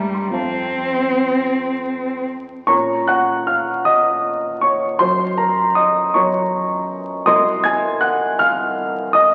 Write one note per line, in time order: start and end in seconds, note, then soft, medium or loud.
0.00 0.32 G2 soft
0.00 0.34 G3 medium
0.00 0.39 G3 soft
0.00 0.31 C5 soft
0.00 0.39 E5 soft
0.00 0.27 A#5 soft
0.14 0.35 C6 soft
0.30 2.60 F2 medium
0.30 2.60 C5 soft
0.30 2.61 F5 soft
0.30 2.62 A5 soft
0.35 2.23 C4 medium
2.67 4.97 A#2 medium
2.67 4.97 C#4 soft
2.67 4.97 F4 soft
2.67 4.97 A#4 soft
2.67 3.05 C#5 medium
2.67 3.05 A#5 medium
2.67 3.08 C#6 loud
3.07 3.45 F#5 medium
3.07 3.47 F#6 medium
3.47 3.84 F5 medium
3.47 3.86 F6 medium
3.85 4.59 D#5 medium
3.85 4.62 D#6 medium
4.61 4.98 C#5 medium
4.61 5.00 C#6 medium
4.99 6.11 F#2 medium
4.99 6.11 C#4 soft
4.99 6.11 F#4 medium
4.99 5.37 A#4 soft
4.99 5.36 C5 medium
4.99 5.38 C6 loud
5.38 5.74 A#4 medium
5.38 5.76 A#5 medium
5.75 6.12 D#5 medium
5.75 6.14 D#6 medium
6.14 7.24 F#2 medium
6.14 7.24 C#4 soft
6.14 7.24 F#4 soft
6.14 7.24 A#4 soft
6.14 7.23 C#5 medium
6.14 7.23 A#5 medium
6.14 7.27 C#6 medium
7.26 9.35 C2 medium
7.26 9.35 C4 soft
7.26 9.35 F#4 soft
7.26 9.35 A#4 medium
7.26 7.62 D#5 medium
7.26 7.62 C6 medium
7.26 7.64 D#6 loud
7.64 8.00 G#5 medium
7.64 8.02 G#6 loud
8.01 8.37 F#5 medium
8.01 8.39 F#6 medium
8.39 9.11 F5 medium
8.39 9.14 F6 loud
9.13 9.35 D#5 medium
9.13 9.35 D#6 loud